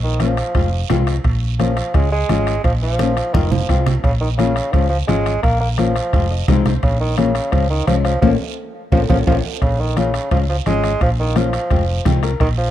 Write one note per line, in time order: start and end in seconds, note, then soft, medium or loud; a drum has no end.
0.00 0.41 A#1 medium
0.00 0.19 D#3 medium
0.20 0.86 F3 medium
0.20 0.32 A#3 medium
0.20 0.32 C#4 medium
0.20 0.33 F4 medium
0.20 bombo rim medium
0.20 high conga medium
0.20 high timbale medium
0.20 short guiro medium
0.37 bombo rim medium
0.37 high timbale medium
0.37 short guiro medium
0.55 0.83 F1 loud
0.55 0.67 G#3 medium
0.55 0.67 C4 medium
0.55 0.67 F4 medium
0.55 bombo low medium
0.55 bombo rim medium
0.55 high conga soft
0.55 high timbale medium
0.55 long guiro medium
0.90 1.18 C2 medium
0.90 1.14 G#3 medium
0.90 1.14 C4 medium
0.90 1.15 F4 medium
0.90 bombo rim medium
0.90 high conga medium
0.90 low conga medium
0.90 high timbale medium
0.90 low timbale medium
0.90 short guiro medium
1.07 bombo rim medium
1.07 high timbale medium
1.07 short guiro medium
1.24 1.81 A#1 medium
1.24 bombo low medium
1.24 bombo rim medium
1.24 high conga soft
1.24 high timbale medium
1.24 long guiro medium
1.59 1.92 F3 medium
1.59 1.72 A#3 medium
1.59 1.72 C#4 medium
1.59 1.72 F4 medium
1.59 bombo rim medium
1.59 high conga medium
1.59 high timbale medium
1.59 short guiro medium
1.77 bombo rim medium
1.77 high timbale medium
1.77 short guiro medium
1.94 2.22 C#2 medium
1.94 2.06 G#3 medium
1.94 2.11 G#3 medium
1.94 2.07 C#4 medium
1.94 2.07 F4 medium
1.94 bombo low medium
1.94 bombo rim medium
1.94 high conga soft
1.94 high timbale medium
1.94 long guiro medium
2.12 2.61 G#3 medium
2.29 2.57 G#1 medium
2.29 2.54 G#3 medium
2.29 2.54 C#4 medium
2.29 2.54 F4 medium
2.29 bombo rim medium
2.29 high conga medium
2.29 high timbale medium
2.29 short guiro medium
2.47 bombo rim medium
2.47 high timbale medium
2.47 short guiro medium
2.64 3.20 A#1 medium
2.64 2.72 F3 medium
2.64 bombo low medium
2.64 bombo rim medium
2.64 high conga soft
2.64 high timbale medium
2.64 long guiro medium
2.82 3.35 F3 medium
2.99 3.11 A#3 medium
2.99 3.12 C#4 medium
2.99 3.12 F4 medium
2.99 bombo rim medium
2.99 high conga medium
2.99 high timbale medium
2.99 short guiro medium
3.17 bombo rim medium
3.17 high timbale medium
3.17 short guiro medium
3.33 3.62 F1 loud
3.33 3.53 D#3 medium
3.33 3.46 G#3 medium
3.33 3.46 C4 medium
3.33 3.47 F4 medium
3.33 bombo low medium
3.33 bombo rim medium
3.33 high conga medium
3.33 high timbale medium
3.33 long guiro medium
3.51 3.87 F3 medium
3.51 low conga medium
3.69 3.97 C2 medium
3.69 3.93 G#3 medium
3.69 3.94 C4 medium
3.69 3.94 F4 medium
3.69 bombo low medium
3.69 bombo rim medium
3.69 high timbale medium
3.69 low timbale medium
3.69 short guiro medium
3.86 bombo rim medium
3.86 low conga medium
3.86 high timbale medium
3.86 short guiro medium
4.03 4.60 A#1 medium
4.03 4.11 C#3 medium
4.03 bombo low medium
4.03 bombo rim medium
4.03 high conga soft
4.03 high timbale medium
4.03 long guiro medium
4.21 4.29 D#3 medium
4.37 4.74 C#3 medium
4.37 4.51 A#3 medium
4.37 4.51 C#4 medium
4.37 4.51 F4 medium
4.37 bombo rim medium
4.37 high conga medium
4.37 high timbale medium
4.37 short guiro medium
4.56 bombo rim medium
4.56 high timbale medium
4.56 short guiro medium
4.72 5.02 C#2 loud
4.72 4.89 F3 medium
4.72 4.86 G#3 medium
4.72 4.86 C#4 medium
4.72 4.86 F4 medium
4.72 bombo low medium
4.72 bombo rim medium
4.72 high conga soft
4.72 high timbale medium
4.72 long guiro medium
4.89 4.97 F3 medium
5.07 5.37 G#1 medium
5.07 5.40 G#3 medium
5.07 5.33 G#3 medium
5.07 5.33 C#4 medium
5.07 5.33 F4 medium
5.07 bombo rim medium
5.07 high conga medium
5.07 high timbale medium
5.07 short guiro medium
5.26 bombo rim medium
5.26 high timbale medium
5.26 short guiro medium
5.43 5.99 A#1 medium
5.43 5.59 A#3 loud
5.43 bombo low medium
5.43 bombo rim medium
5.43 high conga soft
5.43 high timbale medium
5.43 long guiro medium
5.60 5.68 A#3 medium
5.78 6.44 F3 medium
5.78 5.90 A#3 medium
5.78 5.91 C#4 medium
5.78 5.91 F4 medium
5.78 bombo rim medium
5.78 high conga medium
5.78 high timbale medium
5.78 short guiro medium
5.96 bombo rim medium
5.96 high timbale medium
5.96 short guiro medium
6.13 6.41 F1 medium
6.13 6.25 G#3 medium
6.13 6.26 C4 medium
6.13 6.26 F4 medium
6.13 bombo low medium
6.13 bombo rim medium
6.13 high conga soft
6.13 high timbale medium
6.13 long guiro medium
6.31 6.47 D#5 medium
6.48 6.76 C2 medium
6.48 6.73 G#3 medium
6.48 6.73 C4 medium
6.48 6.73 D#4 medium
6.48 6.65 F5 medium
6.48 bombo low medium
6.48 bombo rim medium
6.48 high conga medium
6.48 low conga medium
6.48 high timbale medium
6.48 low timbale medium
6.48 short guiro medium
6.66 6.82 C5 medium
6.66 bombo rim medium
6.66 low conga medium
6.66 high timbale medium
6.66 short guiro medium
6.83 7.39 A#1 medium
6.83 6.99 C#3 medium
6.83 bombo low medium
6.83 bombo rim medium
6.83 high conga soft
6.83 high timbale medium
6.83 long guiro medium
7.00 7.17 D#3 medium
7.17 7.53 C#3 medium
7.17 7.30 A#3 medium
7.17 7.30 C#4 medium
7.17 7.30 F4 medium
7.17 bombo rim medium
7.17 high conga medium
7.17 high timbale medium
7.17 short guiro medium
7.35 bombo rim medium
7.35 high timbale medium
7.35 short guiro medium
7.52 7.80 C#2 loud
7.52 7.69 F3 loud
7.52 7.65 G#3 medium
7.52 7.65 C#4 medium
7.52 7.65 F4 medium
7.52 bombo low medium
7.52 bombo rim medium
7.52 high conga soft
7.52 high timbale medium
7.52 long guiro medium
7.70 7.86 D#3 medium
7.87 8.15 C2 medium
7.87 7.95 F3 medium
7.87 8.12 G#3 medium
7.87 8.12 C#4 medium
7.87 8.12 F4 medium
7.87 bombo rim medium
7.87 high conga medium
7.87 high timbale medium
7.87 short guiro medium
8.04 8.21 F3 medium
8.04 bombo rim medium
8.04 high timbale medium
8.04 short guiro medium
8.21 8.35 A#1 medium
8.21 8.30 F3 medium
8.21 8.34 A#3 loud
8.21 8.34 C#4 medium
8.21 8.34 F4 medium
8.21 bombo low medium
8.21 high conga medium
8.21 high timbale loud
8.21 long guiro medium
8.92 9.05 A#1 medium
8.92 9.00 F3 medium
8.92 9.03 A#3 medium
8.92 9.03 C#4 medium
8.92 9.03 F4 medium
8.92 bombo low loud
8.92 high conga medium
8.92 high timbale medium
8.92 long guiro medium
9.09 9.23 A#1 medium
9.09 9.18 F3 medium
9.09 9.21 A#3 medium
9.09 9.21 C#4 medium
9.09 9.21 F4 medium
9.09 bombo low medium
9.09 high conga medium
9.09 high timbale medium
9.09 long guiro medium
9.27 9.40 A#1 medium
9.27 9.35 F3 medium
9.27 9.38 A#3 medium
9.27 9.38 C#4 medium
9.27 9.38 F4 medium
9.27 bombo low medium
9.27 high conga loud
9.27 high timbale loud
9.27 long guiro loud
9.62 10.18 A#1 medium
9.62 9.81 C#3 medium
9.62 bombo low medium
9.62 bombo rim medium
9.62 high conga soft
9.62 high timbale medium
9.62 long guiro medium
9.79 9.98 D#3 medium
9.97 10.31 C#3 medium
9.97 10.09 A#3 medium
9.97 10.09 C#4 medium
9.97 10.09 F4 medium
9.97 bombo rim medium
9.97 high conga medium
9.97 high timbale medium
9.97 short guiro medium
10.14 bombo rim medium
10.14 high timbale medium
10.14 short guiro medium
10.31 10.59 C#2 loud
10.31 10.39 F3 medium
10.31 10.44 G#3 medium
10.31 10.44 C#4 medium
10.31 10.44 F4 medium
10.31 bombo low medium
10.31 bombo rim medium
10.31 high conga soft
10.31 high timbale medium
10.31 long guiro medium
10.49 10.57 F3 medium
10.66 10.94 G#1 medium
10.66 10.91 G#3 medium
10.66 10.99 G#3 loud
10.66 10.91 C#4 medium
10.66 10.91 F4 medium
10.66 bombo rim medium
10.66 high conga medium
10.66 high timbale medium
10.66 short guiro medium
10.84 bombo rim medium
10.84 high timbale medium
10.84 short guiro medium
11.01 11.57 A#1 medium
11.01 11.10 F3 loud
11.01 bombo low medium
11.01 bombo rim medium
11.01 high conga soft
11.01 high timbale medium
11.01 long guiro medium
11.19 11.39 D#3 medium
11.35 12.06 F3 medium
11.35 11.48 A#3 medium
11.35 11.48 C#4 medium
11.35 11.48 F4 medium
11.35 bombo rim medium
11.35 high conga medium
11.35 high timbale medium
11.35 short guiro medium
11.53 bombo rim medium
11.53 high timbale medium
11.53 short guiro medium
11.71 11.99 F1 loud
11.71 11.83 G#3 medium
11.71 11.83 C4 medium
11.71 11.83 F4 medium
11.71 bombo low medium
11.71 bombo rim medium
11.71 high conga soft
11.71 high timbale medium
11.71 long guiro medium
12.05 12.33 C2 medium
12.05 12.30 G#3 medium
12.05 12.30 C4 medium
12.05 12.30 F4 medium
12.05 12.22 C5 medium
12.05 bombo low medium
12.05 bombo rim medium
12.05 high conga medium
12.05 low conga medium
12.05 high timbale medium
12.05 short guiro medium
12.23 12.39 A#4 medium
12.23 bombo rim medium
12.23 high timbale medium
12.23 short guiro medium
12.40 12.71 A#1 medium
12.40 12.48 D#3 loud
12.40 bombo low medium
12.40 bombo rim medium
12.40 high conga soft
12.40 high timbale medium
12.40 long guiro medium
12.58 12.71 F3 loud